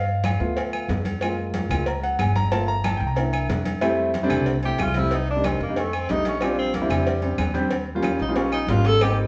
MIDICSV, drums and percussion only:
0, 0, Header, 1, 2, 480
1, 0, Start_track
1, 0, Key_signature, -1, "major"
1, 0, Tempo, 324675
1, 1805, Time_signature, 4, 2, 24, 8
1, 13708, End_track
2, 0, Start_track
2, 0, Title_t, "Drums"
2, 110, Note_on_c, 9, 63, 38
2, 258, Note_off_c, 9, 63, 0
2, 349, Note_on_c, 9, 56, 74
2, 352, Note_on_c, 9, 63, 107
2, 367, Note_on_c, 9, 75, 70
2, 376, Note_on_c, 9, 66, 62
2, 376, Note_on_c, 9, 68, 104
2, 497, Note_off_c, 9, 56, 0
2, 500, Note_off_c, 9, 63, 0
2, 515, Note_off_c, 9, 75, 0
2, 524, Note_off_c, 9, 66, 0
2, 524, Note_off_c, 9, 68, 0
2, 593, Note_on_c, 9, 63, 37
2, 741, Note_off_c, 9, 63, 0
2, 827, Note_on_c, 9, 63, 36
2, 838, Note_on_c, 9, 56, 100
2, 850, Note_on_c, 9, 68, 89
2, 975, Note_off_c, 9, 63, 0
2, 986, Note_off_c, 9, 56, 0
2, 998, Note_off_c, 9, 68, 0
2, 1075, Note_on_c, 9, 63, 34
2, 1081, Note_on_c, 9, 68, 94
2, 1082, Note_on_c, 9, 75, 70
2, 1223, Note_off_c, 9, 63, 0
2, 1229, Note_off_c, 9, 68, 0
2, 1230, Note_off_c, 9, 75, 0
2, 1308, Note_on_c, 9, 63, 90
2, 1318, Note_on_c, 9, 56, 65
2, 1330, Note_on_c, 9, 66, 90
2, 1456, Note_off_c, 9, 63, 0
2, 1466, Note_off_c, 9, 56, 0
2, 1478, Note_off_c, 9, 66, 0
2, 1549, Note_on_c, 9, 63, 79
2, 1554, Note_on_c, 9, 56, 60
2, 1563, Note_on_c, 9, 68, 78
2, 1697, Note_off_c, 9, 63, 0
2, 1702, Note_off_c, 9, 56, 0
2, 1711, Note_off_c, 9, 68, 0
2, 1790, Note_on_c, 9, 56, 97
2, 1790, Note_on_c, 9, 63, 37
2, 1808, Note_on_c, 9, 68, 118
2, 1811, Note_on_c, 9, 75, 71
2, 1938, Note_off_c, 9, 56, 0
2, 1938, Note_off_c, 9, 63, 0
2, 1956, Note_off_c, 9, 68, 0
2, 1959, Note_off_c, 9, 75, 0
2, 2036, Note_on_c, 9, 63, 35
2, 2184, Note_off_c, 9, 63, 0
2, 2273, Note_on_c, 9, 63, 108
2, 2275, Note_on_c, 9, 56, 69
2, 2285, Note_on_c, 9, 66, 67
2, 2285, Note_on_c, 9, 68, 72
2, 2421, Note_off_c, 9, 63, 0
2, 2423, Note_off_c, 9, 56, 0
2, 2433, Note_off_c, 9, 66, 0
2, 2433, Note_off_c, 9, 68, 0
2, 2504, Note_on_c, 9, 63, 39
2, 2504, Note_on_c, 9, 64, 88
2, 2521, Note_on_c, 9, 56, 78
2, 2523, Note_on_c, 9, 68, 112
2, 2527, Note_on_c, 9, 75, 71
2, 2652, Note_off_c, 9, 63, 0
2, 2652, Note_off_c, 9, 64, 0
2, 2669, Note_off_c, 9, 56, 0
2, 2671, Note_off_c, 9, 68, 0
2, 2675, Note_off_c, 9, 75, 0
2, 2747, Note_on_c, 9, 63, 35
2, 2754, Note_on_c, 9, 56, 103
2, 2895, Note_off_c, 9, 63, 0
2, 2901, Note_off_c, 9, 56, 0
2, 3008, Note_on_c, 9, 63, 35
2, 3010, Note_on_c, 9, 68, 67
2, 3156, Note_off_c, 9, 63, 0
2, 3157, Note_off_c, 9, 68, 0
2, 3236, Note_on_c, 9, 56, 70
2, 3237, Note_on_c, 9, 66, 81
2, 3237, Note_on_c, 9, 68, 101
2, 3241, Note_on_c, 9, 63, 89
2, 3246, Note_on_c, 9, 75, 76
2, 3384, Note_off_c, 9, 56, 0
2, 3385, Note_off_c, 9, 66, 0
2, 3385, Note_off_c, 9, 68, 0
2, 3388, Note_off_c, 9, 63, 0
2, 3394, Note_off_c, 9, 75, 0
2, 3483, Note_on_c, 9, 63, 89
2, 3484, Note_on_c, 9, 56, 70
2, 3630, Note_off_c, 9, 63, 0
2, 3631, Note_off_c, 9, 56, 0
2, 3720, Note_on_c, 9, 68, 82
2, 3721, Note_on_c, 9, 56, 110
2, 3725, Note_on_c, 9, 63, 35
2, 3868, Note_off_c, 9, 68, 0
2, 3869, Note_off_c, 9, 56, 0
2, 3872, Note_off_c, 9, 63, 0
2, 3956, Note_on_c, 9, 63, 40
2, 4103, Note_off_c, 9, 63, 0
2, 4199, Note_on_c, 9, 66, 65
2, 4199, Note_on_c, 9, 68, 114
2, 4204, Note_on_c, 9, 75, 77
2, 4205, Note_on_c, 9, 63, 103
2, 4208, Note_on_c, 9, 56, 75
2, 4346, Note_off_c, 9, 66, 0
2, 4346, Note_off_c, 9, 68, 0
2, 4352, Note_off_c, 9, 75, 0
2, 4353, Note_off_c, 9, 63, 0
2, 4356, Note_off_c, 9, 56, 0
2, 4448, Note_on_c, 9, 63, 37
2, 4596, Note_off_c, 9, 63, 0
2, 4674, Note_on_c, 9, 68, 89
2, 4681, Note_on_c, 9, 56, 100
2, 4687, Note_on_c, 9, 63, 37
2, 4822, Note_off_c, 9, 68, 0
2, 4828, Note_off_c, 9, 56, 0
2, 4835, Note_off_c, 9, 63, 0
2, 4923, Note_on_c, 9, 68, 110
2, 4931, Note_on_c, 9, 75, 73
2, 4934, Note_on_c, 9, 63, 39
2, 5071, Note_off_c, 9, 68, 0
2, 5079, Note_off_c, 9, 75, 0
2, 5082, Note_off_c, 9, 63, 0
2, 5163, Note_on_c, 9, 63, 86
2, 5168, Note_on_c, 9, 66, 88
2, 5169, Note_on_c, 9, 56, 77
2, 5311, Note_off_c, 9, 63, 0
2, 5316, Note_off_c, 9, 66, 0
2, 5317, Note_off_c, 9, 56, 0
2, 5402, Note_on_c, 9, 56, 67
2, 5402, Note_on_c, 9, 63, 75
2, 5405, Note_on_c, 9, 68, 82
2, 5549, Note_off_c, 9, 63, 0
2, 5550, Note_off_c, 9, 56, 0
2, 5553, Note_off_c, 9, 68, 0
2, 5638, Note_on_c, 9, 68, 113
2, 5639, Note_on_c, 9, 56, 94
2, 5652, Note_on_c, 9, 75, 67
2, 5786, Note_off_c, 9, 68, 0
2, 5787, Note_off_c, 9, 56, 0
2, 5800, Note_off_c, 9, 75, 0
2, 5892, Note_on_c, 9, 63, 37
2, 6040, Note_off_c, 9, 63, 0
2, 6119, Note_on_c, 9, 66, 59
2, 6119, Note_on_c, 9, 68, 65
2, 6121, Note_on_c, 9, 56, 69
2, 6136, Note_on_c, 9, 63, 100
2, 6267, Note_off_c, 9, 66, 0
2, 6267, Note_off_c, 9, 68, 0
2, 6269, Note_off_c, 9, 56, 0
2, 6284, Note_off_c, 9, 63, 0
2, 6353, Note_on_c, 9, 68, 110
2, 6361, Note_on_c, 9, 56, 73
2, 6361, Note_on_c, 9, 75, 69
2, 6367, Note_on_c, 9, 63, 36
2, 6367, Note_on_c, 9, 64, 95
2, 6501, Note_off_c, 9, 68, 0
2, 6509, Note_off_c, 9, 56, 0
2, 6509, Note_off_c, 9, 75, 0
2, 6515, Note_off_c, 9, 63, 0
2, 6515, Note_off_c, 9, 64, 0
2, 6595, Note_on_c, 9, 56, 95
2, 6742, Note_off_c, 9, 56, 0
2, 6841, Note_on_c, 9, 68, 66
2, 6850, Note_on_c, 9, 63, 34
2, 6988, Note_off_c, 9, 68, 0
2, 6998, Note_off_c, 9, 63, 0
2, 7073, Note_on_c, 9, 56, 71
2, 7080, Note_on_c, 9, 66, 79
2, 7080, Note_on_c, 9, 68, 105
2, 7087, Note_on_c, 9, 63, 84
2, 7091, Note_on_c, 9, 75, 70
2, 7220, Note_off_c, 9, 56, 0
2, 7227, Note_off_c, 9, 66, 0
2, 7227, Note_off_c, 9, 68, 0
2, 7235, Note_off_c, 9, 63, 0
2, 7239, Note_off_c, 9, 75, 0
2, 7306, Note_on_c, 9, 56, 70
2, 7326, Note_on_c, 9, 63, 93
2, 7454, Note_off_c, 9, 56, 0
2, 7474, Note_off_c, 9, 63, 0
2, 7555, Note_on_c, 9, 56, 102
2, 7568, Note_on_c, 9, 68, 72
2, 7573, Note_on_c, 9, 63, 32
2, 7703, Note_off_c, 9, 56, 0
2, 7716, Note_off_c, 9, 68, 0
2, 7721, Note_off_c, 9, 63, 0
2, 7803, Note_on_c, 9, 63, 40
2, 7951, Note_off_c, 9, 63, 0
2, 8040, Note_on_c, 9, 56, 71
2, 8046, Note_on_c, 9, 63, 107
2, 8050, Note_on_c, 9, 75, 65
2, 8061, Note_on_c, 9, 66, 58
2, 8061, Note_on_c, 9, 68, 109
2, 8187, Note_off_c, 9, 56, 0
2, 8194, Note_off_c, 9, 63, 0
2, 8198, Note_off_c, 9, 75, 0
2, 8208, Note_off_c, 9, 66, 0
2, 8208, Note_off_c, 9, 68, 0
2, 8291, Note_on_c, 9, 63, 39
2, 8439, Note_off_c, 9, 63, 0
2, 8521, Note_on_c, 9, 56, 94
2, 8532, Note_on_c, 9, 63, 39
2, 8533, Note_on_c, 9, 68, 96
2, 8669, Note_off_c, 9, 56, 0
2, 8680, Note_off_c, 9, 63, 0
2, 8681, Note_off_c, 9, 68, 0
2, 8771, Note_on_c, 9, 75, 72
2, 8772, Note_on_c, 9, 68, 105
2, 8775, Note_on_c, 9, 63, 33
2, 8919, Note_off_c, 9, 75, 0
2, 8920, Note_off_c, 9, 68, 0
2, 8923, Note_off_c, 9, 63, 0
2, 9004, Note_on_c, 9, 56, 64
2, 9009, Note_on_c, 9, 66, 79
2, 9020, Note_on_c, 9, 63, 83
2, 9151, Note_off_c, 9, 56, 0
2, 9157, Note_off_c, 9, 66, 0
2, 9168, Note_off_c, 9, 63, 0
2, 9242, Note_on_c, 9, 56, 69
2, 9246, Note_on_c, 9, 68, 78
2, 9390, Note_off_c, 9, 56, 0
2, 9394, Note_off_c, 9, 68, 0
2, 9472, Note_on_c, 9, 56, 95
2, 9490, Note_on_c, 9, 75, 63
2, 9492, Note_on_c, 9, 63, 37
2, 9493, Note_on_c, 9, 68, 108
2, 9620, Note_off_c, 9, 56, 0
2, 9638, Note_off_c, 9, 75, 0
2, 9640, Note_off_c, 9, 63, 0
2, 9641, Note_off_c, 9, 68, 0
2, 9745, Note_on_c, 9, 63, 33
2, 9893, Note_off_c, 9, 63, 0
2, 9963, Note_on_c, 9, 63, 95
2, 9968, Note_on_c, 9, 56, 74
2, 9968, Note_on_c, 9, 66, 62
2, 9968, Note_on_c, 9, 68, 66
2, 10111, Note_off_c, 9, 63, 0
2, 10116, Note_off_c, 9, 56, 0
2, 10116, Note_off_c, 9, 66, 0
2, 10116, Note_off_c, 9, 68, 0
2, 10204, Note_on_c, 9, 68, 111
2, 10205, Note_on_c, 9, 63, 36
2, 10205, Note_on_c, 9, 64, 92
2, 10210, Note_on_c, 9, 56, 76
2, 10210, Note_on_c, 9, 75, 72
2, 10352, Note_off_c, 9, 68, 0
2, 10353, Note_off_c, 9, 63, 0
2, 10353, Note_off_c, 9, 64, 0
2, 10358, Note_off_c, 9, 56, 0
2, 10358, Note_off_c, 9, 75, 0
2, 10448, Note_on_c, 9, 56, 101
2, 10451, Note_on_c, 9, 63, 34
2, 10596, Note_off_c, 9, 56, 0
2, 10599, Note_off_c, 9, 63, 0
2, 10676, Note_on_c, 9, 68, 65
2, 10678, Note_on_c, 9, 63, 31
2, 10824, Note_off_c, 9, 68, 0
2, 10826, Note_off_c, 9, 63, 0
2, 10910, Note_on_c, 9, 63, 88
2, 10914, Note_on_c, 9, 75, 71
2, 10915, Note_on_c, 9, 56, 64
2, 10919, Note_on_c, 9, 66, 85
2, 10919, Note_on_c, 9, 68, 104
2, 11058, Note_off_c, 9, 63, 0
2, 11062, Note_off_c, 9, 56, 0
2, 11062, Note_off_c, 9, 75, 0
2, 11067, Note_off_c, 9, 66, 0
2, 11067, Note_off_c, 9, 68, 0
2, 11155, Note_on_c, 9, 63, 88
2, 11157, Note_on_c, 9, 56, 61
2, 11303, Note_off_c, 9, 63, 0
2, 11305, Note_off_c, 9, 56, 0
2, 11388, Note_on_c, 9, 63, 39
2, 11392, Note_on_c, 9, 56, 102
2, 11393, Note_on_c, 9, 68, 71
2, 11536, Note_off_c, 9, 63, 0
2, 11539, Note_off_c, 9, 56, 0
2, 11541, Note_off_c, 9, 68, 0
2, 11627, Note_on_c, 9, 63, 36
2, 11775, Note_off_c, 9, 63, 0
2, 11864, Note_on_c, 9, 63, 106
2, 11868, Note_on_c, 9, 56, 66
2, 11874, Note_on_c, 9, 65, 79
2, 11874, Note_on_c, 9, 68, 108
2, 11891, Note_on_c, 9, 75, 68
2, 12012, Note_off_c, 9, 63, 0
2, 12016, Note_off_c, 9, 56, 0
2, 12021, Note_off_c, 9, 65, 0
2, 12021, Note_off_c, 9, 68, 0
2, 12039, Note_off_c, 9, 75, 0
2, 12107, Note_on_c, 9, 63, 38
2, 12115, Note_on_c, 9, 65, 80
2, 12254, Note_off_c, 9, 63, 0
2, 12263, Note_off_c, 9, 65, 0
2, 12342, Note_on_c, 9, 63, 35
2, 12354, Note_on_c, 9, 56, 99
2, 12357, Note_on_c, 9, 66, 94
2, 12357, Note_on_c, 9, 68, 88
2, 12490, Note_off_c, 9, 63, 0
2, 12502, Note_off_c, 9, 56, 0
2, 12504, Note_off_c, 9, 66, 0
2, 12504, Note_off_c, 9, 68, 0
2, 12588, Note_on_c, 9, 63, 35
2, 12595, Note_on_c, 9, 68, 104
2, 12605, Note_on_c, 9, 75, 73
2, 12735, Note_off_c, 9, 63, 0
2, 12743, Note_off_c, 9, 68, 0
2, 12753, Note_off_c, 9, 75, 0
2, 12817, Note_on_c, 9, 63, 81
2, 12839, Note_on_c, 9, 56, 72
2, 12842, Note_on_c, 9, 66, 103
2, 12964, Note_off_c, 9, 63, 0
2, 12987, Note_off_c, 9, 56, 0
2, 12990, Note_off_c, 9, 66, 0
2, 13076, Note_on_c, 9, 56, 68
2, 13081, Note_on_c, 9, 66, 78
2, 13081, Note_on_c, 9, 68, 72
2, 13224, Note_off_c, 9, 56, 0
2, 13229, Note_off_c, 9, 66, 0
2, 13229, Note_off_c, 9, 68, 0
2, 13317, Note_on_c, 9, 63, 39
2, 13322, Note_on_c, 9, 56, 108
2, 13324, Note_on_c, 9, 75, 74
2, 13329, Note_on_c, 9, 68, 99
2, 13465, Note_off_c, 9, 63, 0
2, 13470, Note_off_c, 9, 56, 0
2, 13472, Note_off_c, 9, 75, 0
2, 13477, Note_off_c, 9, 68, 0
2, 13560, Note_on_c, 9, 63, 35
2, 13708, Note_off_c, 9, 63, 0
2, 13708, End_track
0, 0, End_of_file